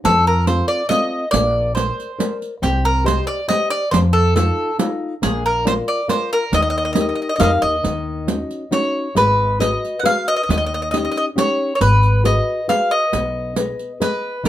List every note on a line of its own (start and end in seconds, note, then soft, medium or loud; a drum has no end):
0.04 0.60 F2 loud
0.04 0.46 F3 medium
0.04 0.24 A4 loud
0.04 riq medium
0.27 0.46 A#4 medium
0.47 0.82 C4 soft
0.47 0.82 F4 soft
0.47 0.82 A4 soft
0.47 0.67 C5 medium
0.47 riq soft
0.68 0.88 D5 medium
0.89 1.24 C4 soft
0.89 1.24 F4 soft
0.89 1.24 A4 soft
0.89 1.29 D#5 loud
0.89 riq medium
1.31 1.89 A#1 loud
1.31 1.75 A#3 medium
1.31 1.72 D5 loud
1.31 riq medium
1.75 2.11 A#4 soft
1.75 2.37 C5 medium
1.75 2.11 C5 soft
1.75 2.11 D5 soft
1.75 riq medium
2.00 riq soft
2.19 2.54 A#4 soft
2.19 2.54 C5 soft
2.19 2.54 D5 soft
2.19 riq medium
2.42 riq soft
2.62 3.19 C2 loud
2.62 3.05 C4 medium
2.62 2.83 G4 medium
2.62 riq soft
2.85 3.05 A#4 medium
3.04 3.40 G4 soft
3.04 3.40 C5 soft
3.04 3.27 C5 medium
3.04 3.41 D#5 medium
3.04 riq medium
3.27 3.48 D5 medium
3.48 3.83 G4 soft
3.48 3.83 C5 soft
3.48 3.69 D#5 loud
3.48 3.84 D#5 soft
3.48 riq medium
3.70 3.91 D5 loud
3.91 4.49 F2 loud
3.91 4.34 F3 medium
3.91 3.97 C5 medium
3.91 riq medium
4.13 4.34 A4 medium
4.35 4.70 D#4 soft
4.35 4.70 F4 soft
4.35 4.76 A4 medium
4.35 4.70 A4 medium
4.35 riq medium
4.79 5.13 D#4 soft
4.79 5.14 F4 soft
4.79 5.14 A4 soft
4.79 riq medium
5.22 5.79 A#1 loud
5.22 5.64 A#3 medium
5.22 5.43 G#4 medium
5.22 riq medium
5.46 5.65 A#4 medium
5.65 6.00 F4 soft
5.65 6.00 A#4 soft
5.65 5.73 C5 medium
5.65 6.00 D5 medium
5.65 riq medium
5.88 6.10 D5 medium
6.08 6.43 F4 soft
6.08 6.44 A#4 soft
6.08 6.32 C5 medium
6.08 6.44 D5 soft
6.08 riq medium
6.33 6.52 A#4 loud
6.52 7.10 D#2 loud
6.52 6.95 D#3 medium
6.52 6.61 D#5 medium
6.52 riq medium
6.62 6.68 D#5 medium
6.70 6.76 D#5 medium
6.78 6.83 D#5 medium
6.85 6.91 D#5 medium
6.93 7.31 D#4 soft
6.93 7.31 G4 soft
6.93 7.31 A#4 soft
6.93 6.99 D#5 medium
6.93 riq medium
7.01 7.06 D#5 soft
7.09 7.14 D#5 soft
7.15 7.21 D#5 medium
7.22 7.28 D#5 soft
7.29 7.35 D#5 medium
7.36 7.75 D#4 soft
7.36 7.76 G4 soft
7.36 7.42 D#5 medium
7.36 7.61 F5 medium
7.40 7.61 F2 medium
7.40 7.76 A#4 soft
7.40 7.50 D#5 medium
7.40 riq medium
7.62 7.83 D#2 medium
7.62 8.72 D#5 loud
7.84 8.43 D#2 medium
7.84 8.27 D#3 medium
7.84 riq soft
8.27 8.63 C#4 soft
8.27 8.63 D#4 soft
8.27 8.64 F#4 soft
8.27 riq medium
8.51 riq soft
8.71 9.07 C#4 soft
8.71 9.07 D#4 soft
8.71 9.07 F#4 soft
8.71 9.14 C#5 medium
8.71 riq medium
9.15 9.74 G#1 medium
9.15 9.59 G#3 medium
9.15 9.58 B4 medium
9.15 riq soft
9.60 9.95 F#4 soft
9.60 9.96 G#4 soft
9.60 9.96 B4 soft
9.60 10.00 D#5 medium
9.60 riq medium
9.85 riq soft
9.99 10.39 F#4 soft
9.99 10.05 F#5 medium
10.04 10.39 G#4 soft
10.04 10.39 B4 soft
10.04 10.26 F5 loud
10.04 riq soft
10.28 10.35 D#5 loud
10.36 10.42 D#5 medium
10.43 10.50 D#5 medium
10.49 11.06 D#2 medium
10.49 10.92 D#3 medium
10.49 10.56 D#5 medium
10.49 riq medium
10.58 10.64 D#5 medium
10.66 10.73 D#5 medium
10.74 10.80 D#5 medium
10.82 10.88 D#5 medium
10.91 11.28 C#4 soft
10.91 11.28 D#4 soft
10.91 11.28 G4 medium
10.91 10.96 D#5 medium
10.91 riq soft
10.98 11.03 D#5 soft
11.05 11.10 D#5 medium
11.12 11.16 D#5 medium
11.16 11.24 D#5 medium
11.16 riq soft
11.36 11.71 C#4 soft
11.36 11.72 D#4 soft
11.36 11.72 G4 soft
11.36 11.74 C#5 medium
11.36 riq medium
11.75 11.81 C#5 medium
11.81 12.38 G#1 loud
11.81 12.24 G#3 medium
11.81 12.22 B4 medium
11.81 riq soft
12.03 riq soft
12.24 12.60 F#4 soft
12.24 12.60 G#4 soft
12.24 12.60 B4 soft
12.24 12.66 D#5 medium
12.24 riq soft
12.68 13.04 F#4 soft
12.68 13.04 G#4 soft
12.68 13.04 B4 soft
12.68 12.92 F5 medium
12.68 riq soft
12.91 13.97 D#5 medium
13.13 13.70 B1 medium
13.13 13.56 B3 medium
13.13 riq medium
13.56 13.92 G#4 soft
13.56 13.92 B4 soft
13.56 13.92 D#5 medium
13.56 riq medium
13.79 riq soft
14.00 14.36 G#4 soft
14.00 14.36 B4 soft
14.00 14.46 B4 medium
14.00 14.36 D#5 soft
14.00 riq medium
14.44 14.49 D#2 medium
14.44 14.49 D#3 medium
14.44 riq medium